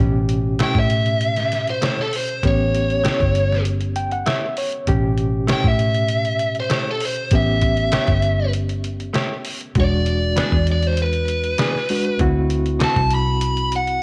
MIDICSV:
0, 0, Header, 1, 6, 480
1, 0, Start_track
1, 0, Tempo, 610376
1, 1912, Time_signature, 4, 2, 24, 8
1, 11032, End_track
2, 0, Start_track
2, 0, Title_t, "Lead electric guitar"
2, 0, Program_c, 0, 29
2, 499, Note_on_c, 0, 79, 79
2, 604, Note_off_c, 0, 79, 0
2, 625, Note_on_c, 0, 76, 79
2, 1309, Note_off_c, 0, 76, 0
2, 1339, Note_on_c, 0, 72, 73
2, 1560, Note_off_c, 0, 72, 0
2, 1583, Note_on_c, 0, 69, 86
2, 1683, Note_off_c, 0, 69, 0
2, 1697, Note_on_c, 0, 72, 77
2, 1918, Note_off_c, 0, 72, 0
2, 1944, Note_on_c, 0, 73, 71
2, 2861, Note_off_c, 0, 73, 0
2, 4347, Note_on_c, 0, 79, 78
2, 4451, Note_off_c, 0, 79, 0
2, 4468, Note_on_c, 0, 76, 66
2, 5153, Note_off_c, 0, 76, 0
2, 5189, Note_on_c, 0, 72, 81
2, 5407, Note_off_c, 0, 72, 0
2, 5434, Note_on_c, 0, 69, 74
2, 5530, Note_off_c, 0, 69, 0
2, 5544, Note_on_c, 0, 72, 76
2, 5763, Note_off_c, 0, 72, 0
2, 5780, Note_on_c, 0, 76, 80
2, 6699, Note_off_c, 0, 76, 0
2, 7707, Note_on_c, 0, 74, 97
2, 8389, Note_off_c, 0, 74, 0
2, 8427, Note_on_c, 0, 74, 70
2, 8547, Note_off_c, 0, 74, 0
2, 8547, Note_on_c, 0, 72, 72
2, 8646, Note_off_c, 0, 72, 0
2, 8667, Note_on_c, 0, 71, 77
2, 9581, Note_off_c, 0, 71, 0
2, 10097, Note_on_c, 0, 81, 76
2, 10317, Note_off_c, 0, 81, 0
2, 10336, Note_on_c, 0, 83, 73
2, 10789, Note_off_c, 0, 83, 0
2, 10821, Note_on_c, 0, 78, 85
2, 11032, Note_off_c, 0, 78, 0
2, 11032, End_track
3, 0, Start_track
3, 0, Title_t, "Clean electric guitar"
3, 0, Program_c, 1, 27
3, 467, Note_on_c, 1, 57, 68
3, 474, Note_on_c, 1, 64, 70
3, 480, Note_on_c, 1, 67, 69
3, 488, Note_on_c, 1, 73, 75
3, 615, Note_off_c, 1, 57, 0
3, 618, Note_off_c, 1, 64, 0
3, 621, Note_off_c, 1, 67, 0
3, 625, Note_off_c, 1, 73, 0
3, 1429, Note_on_c, 1, 57, 63
3, 1436, Note_on_c, 1, 64, 68
3, 1443, Note_on_c, 1, 67, 63
3, 1446, Note_on_c, 1, 73, 76
3, 1577, Note_off_c, 1, 57, 0
3, 1580, Note_off_c, 1, 64, 0
3, 1584, Note_off_c, 1, 67, 0
3, 1585, Note_off_c, 1, 73, 0
3, 2388, Note_on_c, 1, 57, 71
3, 2396, Note_on_c, 1, 64, 71
3, 2399, Note_on_c, 1, 67, 89
3, 2406, Note_on_c, 1, 73, 78
3, 2537, Note_off_c, 1, 57, 0
3, 2541, Note_off_c, 1, 64, 0
3, 2543, Note_off_c, 1, 67, 0
3, 2546, Note_off_c, 1, 73, 0
3, 3352, Note_on_c, 1, 57, 84
3, 3358, Note_on_c, 1, 64, 77
3, 3364, Note_on_c, 1, 67, 74
3, 3369, Note_on_c, 1, 73, 78
3, 3500, Note_off_c, 1, 57, 0
3, 3503, Note_off_c, 1, 64, 0
3, 3506, Note_off_c, 1, 67, 0
3, 3508, Note_off_c, 1, 73, 0
3, 4305, Note_on_c, 1, 57, 73
3, 4313, Note_on_c, 1, 64, 78
3, 4318, Note_on_c, 1, 67, 76
3, 4322, Note_on_c, 1, 73, 76
3, 4457, Note_off_c, 1, 57, 0
3, 4461, Note_off_c, 1, 64, 0
3, 4463, Note_off_c, 1, 67, 0
3, 4465, Note_off_c, 1, 73, 0
3, 5266, Note_on_c, 1, 57, 65
3, 5272, Note_on_c, 1, 64, 63
3, 5283, Note_on_c, 1, 67, 69
3, 5285, Note_on_c, 1, 73, 78
3, 5418, Note_off_c, 1, 57, 0
3, 5420, Note_off_c, 1, 64, 0
3, 5426, Note_off_c, 1, 67, 0
3, 5427, Note_off_c, 1, 73, 0
3, 6229, Note_on_c, 1, 57, 68
3, 6234, Note_on_c, 1, 64, 72
3, 6240, Note_on_c, 1, 67, 79
3, 6246, Note_on_c, 1, 73, 74
3, 6379, Note_off_c, 1, 57, 0
3, 6381, Note_off_c, 1, 64, 0
3, 6384, Note_off_c, 1, 67, 0
3, 6387, Note_off_c, 1, 73, 0
3, 7184, Note_on_c, 1, 57, 69
3, 7192, Note_on_c, 1, 64, 69
3, 7198, Note_on_c, 1, 67, 79
3, 7204, Note_on_c, 1, 73, 84
3, 7336, Note_off_c, 1, 57, 0
3, 7340, Note_off_c, 1, 64, 0
3, 7343, Note_off_c, 1, 67, 0
3, 7346, Note_off_c, 1, 73, 0
3, 8149, Note_on_c, 1, 52, 66
3, 8159, Note_on_c, 1, 59, 82
3, 8164, Note_on_c, 1, 62, 83
3, 8168, Note_on_c, 1, 68, 82
3, 8298, Note_off_c, 1, 52, 0
3, 8303, Note_off_c, 1, 59, 0
3, 8305, Note_off_c, 1, 62, 0
3, 8308, Note_off_c, 1, 68, 0
3, 9110, Note_on_c, 1, 52, 61
3, 9118, Note_on_c, 1, 59, 70
3, 9120, Note_on_c, 1, 62, 62
3, 9127, Note_on_c, 1, 68, 69
3, 9258, Note_off_c, 1, 52, 0
3, 9262, Note_off_c, 1, 59, 0
3, 9263, Note_off_c, 1, 62, 0
3, 9266, Note_off_c, 1, 68, 0
3, 10063, Note_on_c, 1, 50, 75
3, 10071, Note_on_c, 1, 57, 81
3, 10078, Note_on_c, 1, 60, 75
3, 10085, Note_on_c, 1, 66, 84
3, 10214, Note_off_c, 1, 50, 0
3, 10218, Note_off_c, 1, 57, 0
3, 10221, Note_off_c, 1, 60, 0
3, 10225, Note_off_c, 1, 66, 0
3, 11032, End_track
4, 0, Start_track
4, 0, Title_t, "Reed electric piano"
4, 0, Program_c, 2, 4
4, 0, Note_on_c, 2, 47, 73
4, 0, Note_on_c, 2, 61, 69
4, 0, Note_on_c, 2, 67, 73
4, 1881, Note_off_c, 2, 47, 0
4, 1882, Note_off_c, 2, 67, 0
4, 1883, Note_off_c, 2, 61, 0
4, 1923, Note_on_c, 2, 59, 64
4, 1924, Note_on_c, 2, 61, 57
4, 1925, Note_on_c, 2, 67, 64
4, 3114, Note_on_c, 2, 79, 66
4, 3229, Note_off_c, 2, 79, 0
4, 3242, Note_on_c, 2, 78, 56
4, 3348, Note_off_c, 2, 78, 0
4, 3354, Note_on_c, 2, 76, 68
4, 3577, Note_off_c, 2, 76, 0
4, 3602, Note_on_c, 2, 73, 56
4, 3809, Note_off_c, 2, 59, 0
4, 3809, Note_off_c, 2, 61, 0
4, 3810, Note_off_c, 2, 67, 0
4, 3822, Note_off_c, 2, 73, 0
4, 3839, Note_on_c, 2, 61, 67
4, 3840, Note_on_c, 2, 47, 66
4, 3842, Note_on_c, 2, 67, 86
4, 5726, Note_off_c, 2, 61, 0
4, 5727, Note_off_c, 2, 47, 0
4, 5728, Note_off_c, 2, 67, 0
4, 5764, Note_on_c, 2, 59, 60
4, 5764, Note_on_c, 2, 67, 64
4, 5765, Note_on_c, 2, 61, 56
4, 7647, Note_off_c, 2, 59, 0
4, 7648, Note_off_c, 2, 61, 0
4, 7648, Note_off_c, 2, 67, 0
4, 7678, Note_on_c, 2, 56, 62
4, 7684, Note_on_c, 2, 62, 50
4, 7689, Note_on_c, 2, 66, 66
4, 9323, Note_off_c, 2, 56, 0
4, 9326, Note_off_c, 2, 62, 0
4, 9328, Note_off_c, 2, 66, 0
4, 9358, Note_on_c, 2, 56, 52
4, 9358, Note_on_c, 2, 66, 54
4, 9360, Note_on_c, 2, 62, 49
4, 9592, Note_on_c, 2, 60, 71
4, 9595, Note_off_c, 2, 56, 0
4, 9595, Note_off_c, 2, 66, 0
4, 9596, Note_off_c, 2, 62, 0
4, 9599, Note_on_c, 2, 64, 67
4, 9604, Note_on_c, 2, 66, 82
4, 11032, Note_off_c, 2, 60, 0
4, 11032, Note_off_c, 2, 64, 0
4, 11032, Note_off_c, 2, 66, 0
4, 11032, End_track
5, 0, Start_track
5, 0, Title_t, "Fingered electric bass"
5, 0, Program_c, 3, 33
5, 0, Note_on_c, 3, 33, 85
5, 492, Note_off_c, 3, 33, 0
5, 589, Note_on_c, 3, 45, 81
5, 1396, Note_off_c, 3, 45, 0
5, 1916, Note_on_c, 3, 33, 81
5, 2420, Note_off_c, 3, 33, 0
5, 2520, Note_on_c, 3, 31, 80
5, 3323, Note_off_c, 3, 31, 0
5, 3835, Note_on_c, 3, 33, 85
5, 4340, Note_off_c, 3, 33, 0
5, 4437, Note_on_c, 3, 45, 79
5, 5241, Note_off_c, 3, 45, 0
5, 5752, Note_on_c, 3, 33, 86
5, 6258, Note_off_c, 3, 33, 0
5, 6353, Note_on_c, 3, 31, 77
5, 7159, Note_off_c, 3, 31, 0
5, 7672, Note_on_c, 3, 28, 86
5, 8177, Note_off_c, 3, 28, 0
5, 8274, Note_on_c, 3, 40, 81
5, 9078, Note_off_c, 3, 40, 0
5, 9588, Note_on_c, 3, 38, 86
5, 10094, Note_off_c, 3, 38, 0
5, 10193, Note_on_c, 3, 36, 86
5, 10996, Note_off_c, 3, 36, 0
5, 11032, End_track
6, 0, Start_track
6, 0, Title_t, "Drums"
6, 227, Note_on_c, 9, 42, 61
6, 306, Note_off_c, 9, 42, 0
6, 465, Note_on_c, 9, 42, 84
6, 474, Note_on_c, 9, 38, 100
6, 544, Note_off_c, 9, 42, 0
6, 553, Note_off_c, 9, 38, 0
6, 590, Note_on_c, 9, 36, 66
6, 668, Note_off_c, 9, 36, 0
6, 707, Note_on_c, 9, 42, 62
6, 785, Note_off_c, 9, 42, 0
6, 833, Note_on_c, 9, 42, 38
6, 911, Note_off_c, 9, 42, 0
6, 950, Note_on_c, 9, 42, 76
6, 1029, Note_off_c, 9, 42, 0
6, 1073, Note_on_c, 9, 42, 41
6, 1081, Note_on_c, 9, 38, 32
6, 1151, Note_off_c, 9, 42, 0
6, 1160, Note_off_c, 9, 38, 0
6, 1194, Note_on_c, 9, 42, 68
6, 1203, Note_on_c, 9, 38, 34
6, 1273, Note_off_c, 9, 42, 0
6, 1282, Note_off_c, 9, 38, 0
6, 1317, Note_on_c, 9, 42, 34
6, 1395, Note_off_c, 9, 42, 0
6, 1431, Note_on_c, 9, 42, 83
6, 1440, Note_on_c, 9, 38, 101
6, 1510, Note_off_c, 9, 42, 0
6, 1518, Note_off_c, 9, 38, 0
6, 1565, Note_on_c, 9, 38, 33
6, 1643, Note_off_c, 9, 38, 0
6, 1674, Note_on_c, 9, 46, 75
6, 1753, Note_off_c, 9, 46, 0
6, 1800, Note_on_c, 9, 42, 37
6, 1879, Note_off_c, 9, 42, 0
6, 1913, Note_on_c, 9, 36, 115
6, 1914, Note_on_c, 9, 42, 77
6, 1992, Note_off_c, 9, 36, 0
6, 1993, Note_off_c, 9, 42, 0
6, 2159, Note_on_c, 9, 42, 53
6, 2238, Note_off_c, 9, 42, 0
6, 2282, Note_on_c, 9, 42, 32
6, 2361, Note_off_c, 9, 42, 0
6, 2396, Note_on_c, 9, 42, 79
6, 2405, Note_on_c, 9, 38, 107
6, 2475, Note_off_c, 9, 42, 0
6, 2483, Note_off_c, 9, 38, 0
6, 2517, Note_on_c, 9, 36, 65
6, 2521, Note_on_c, 9, 42, 37
6, 2596, Note_off_c, 9, 36, 0
6, 2599, Note_off_c, 9, 42, 0
6, 2635, Note_on_c, 9, 42, 55
6, 2713, Note_off_c, 9, 42, 0
6, 2772, Note_on_c, 9, 38, 37
6, 2850, Note_off_c, 9, 38, 0
6, 2872, Note_on_c, 9, 42, 74
6, 2951, Note_off_c, 9, 42, 0
6, 2993, Note_on_c, 9, 42, 37
6, 3072, Note_off_c, 9, 42, 0
6, 3112, Note_on_c, 9, 42, 58
6, 3191, Note_off_c, 9, 42, 0
6, 3236, Note_on_c, 9, 42, 28
6, 3314, Note_off_c, 9, 42, 0
6, 3353, Note_on_c, 9, 42, 71
6, 3362, Note_on_c, 9, 38, 94
6, 3432, Note_off_c, 9, 42, 0
6, 3441, Note_off_c, 9, 38, 0
6, 3592, Note_on_c, 9, 46, 72
6, 3671, Note_off_c, 9, 46, 0
6, 3716, Note_on_c, 9, 42, 36
6, 3794, Note_off_c, 9, 42, 0
6, 3831, Note_on_c, 9, 42, 76
6, 3833, Note_on_c, 9, 36, 103
6, 3909, Note_off_c, 9, 42, 0
6, 3911, Note_off_c, 9, 36, 0
6, 4070, Note_on_c, 9, 42, 51
6, 4149, Note_off_c, 9, 42, 0
6, 4312, Note_on_c, 9, 42, 85
6, 4321, Note_on_c, 9, 38, 111
6, 4391, Note_off_c, 9, 42, 0
6, 4400, Note_off_c, 9, 38, 0
6, 4436, Note_on_c, 9, 36, 70
6, 4515, Note_off_c, 9, 36, 0
6, 4554, Note_on_c, 9, 42, 58
6, 4632, Note_off_c, 9, 42, 0
6, 4675, Note_on_c, 9, 42, 43
6, 4754, Note_off_c, 9, 42, 0
6, 4785, Note_on_c, 9, 42, 75
6, 4864, Note_off_c, 9, 42, 0
6, 4914, Note_on_c, 9, 42, 38
6, 4992, Note_off_c, 9, 42, 0
6, 5028, Note_on_c, 9, 42, 60
6, 5106, Note_off_c, 9, 42, 0
6, 5150, Note_on_c, 9, 42, 33
6, 5229, Note_off_c, 9, 42, 0
6, 5268, Note_on_c, 9, 42, 80
6, 5277, Note_on_c, 9, 38, 103
6, 5347, Note_off_c, 9, 42, 0
6, 5355, Note_off_c, 9, 38, 0
6, 5508, Note_on_c, 9, 46, 76
6, 5587, Note_off_c, 9, 46, 0
6, 5631, Note_on_c, 9, 42, 35
6, 5710, Note_off_c, 9, 42, 0
6, 5747, Note_on_c, 9, 42, 87
6, 5753, Note_on_c, 9, 36, 108
6, 5826, Note_off_c, 9, 42, 0
6, 5831, Note_off_c, 9, 36, 0
6, 5988, Note_on_c, 9, 42, 59
6, 5992, Note_on_c, 9, 36, 74
6, 6067, Note_off_c, 9, 42, 0
6, 6071, Note_off_c, 9, 36, 0
6, 6110, Note_on_c, 9, 42, 37
6, 6189, Note_off_c, 9, 42, 0
6, 6227, Note_on_c, 9, 42, 91
6, 6236, Note_on_c, 9, 38, 111
6, 6306, Note_off_c, 9, 42, 0
6, 6314, Note_off_c, 9, 38, 0
6, 6348, Note_on_c, 9, 42, 38
6, 6354, Note_on_c, 9, 36, 65
6, 6427, Note_off_c, 9, 42, 0
6, 6433, Note_off_c, 9, 36, 0
6, 6467, Note_on_c, 9, 42, 59
6, 6546, Note_off_c, 9, 42, 0
6, 6711, Note_on_c, 9, 42, 73
6, 6790, Note_off_c, 9, 42, 0
6, 6836, Note_on_c, 9, 42, 38
6, 6914, Note_off_c, 9, 42, 0
6, 6952, Note_on_c, 9, 42, 53
6, 7031, Note_off_c, 9, 42, 0
6, 7078, Note_on_c, 9, 42, 30
6, 7156, Note_off_c, 9, 42, 0
6, 7190, Note_on_c, 9, 42, 75
6, 7199, Note_on_c, 9, 38, 99
6, 7269, Note_off_c, 9, 42, 0
6, 7278, Note_off_c, 9, 38, 0
6, 7429, Note_on_c, 9, 46, 77
6, 7507, Note_off_c, 9, 46, 0
6, 7557, Note_on_c, 9, 42, 36
6, 7635, Note_off_c, 9, 42, 0
6, 7669, Note_on_c, 9, 42, 73
6, 7671, Note_on_c, 9, 36, 112
6, 7748, Note_off_c, 9, 42, 0
6, 7750, Note_off_c, 9, 36, 0
6, 7912, Note_on_c, 9, 42, 57
6, 7991, Note_off_c, 9, 42, 0
6, 8152, Note_on_c, 9, 42, 84
6, 8161, Note_on_c, 9, 38, 99
6, 8231, Note_off_c, 9, 42, 0
6, 8240, Note_off_c, 9, 38, 0
6, 8275, Note_on_c, 9, 36, 61
6, 8354, Note_off_c, 9, 36, 0
6, 8390, Note_on_c, 9, 42, 58
6, 8469, Note_off_c, 9, 42, 0
6, 8513, Note_on_c, 9, 42, 36
6, 8592, Note_off_c, 9, 42, 0
6, 8628, Note_on_c, 9, 42, 74
6, 8707, Note_off_c, 9, 42, 0
6, 8752, Note_on_c, 9, 42, 37
6, 8830, Note_off_c, 9, 42, 0
6, 8872, Note_on_c, 9, 42, 63
6, 8951, Note_off_c, 9, 42, 0
6, 8994, Note_on_c, 9, 42, 35
6, 9072, Note_off_c, 9, 42, 0
6, 9108, Note_on_c, 9, 42, 81
6, 9117, Note_on_c, 9, 38, 107
6, 9187, Note_off_c, 9, 42, 0
6, 9195, Note_off_c, 9, 38, 0
6, 9240, Note_on_c, 9, 38, 31
6, 9319, Note_off_c, 9, 38, 0
6, 9349, Note_on_c, 9, 46, 77
6, 9428, Note_off_c, 9, 46, 0
6, 9475, Note_on_c, 9, 42, 38
6, 9553, Note_off_c, 9, 42, 0
6, 9589, Note_on_c, 9, 42, 80
6, 9591, Note_on_c, 9, 36, 103
6, 9668, Note_off_c, 9, 42, 0
6, 9669, Note_off_c, 9, 36, 0
6, 9830, Note_on_c, 9, 42, 60
6, 9909, Note_off_c, 9, 42, 0
6, 9954, Note_on_c, 9, 42, 38
6, 10033, Note_off_c, 9, 42, 0
6, 10068, Note_on_c, 9, 42, 86
6, 10076, Note_on_c, 9, 38, 114
6, 10146, Note_off_c, 9, 42, 0
6, 10155, Note_off_c, 9, 38, 0
6, 10194, Note_on_c, 9, 36, 65
6, 10195, Note_on_c, 9, 42, 37
6, 10273, Note_off_c, 9, 36, 0
6, 10273, Note_off_c, 9, 42, 0
6, 10306, Note_on_c, 9, 42, 60
6, 10385, Note_off_c, 9, 42, 0
6, 10547, Note_on_c, 9, 42, 87
6, 10626, Note_off_c, 9, 42, 0
6, 10672, Note_on_c, 9, 42, 40
6, 10750, Note_off_c, 9, 42, 0
6, 10789, Note_on_c, 9, 42, 59
6, 10868, Note_off_c, 9, 42, 0
6, 10911, Note_on_c, 9, 42, 34
6, 10989, Note_off_c, 9, 42, 0
6, 11032, End_track
0, 0, End_of_file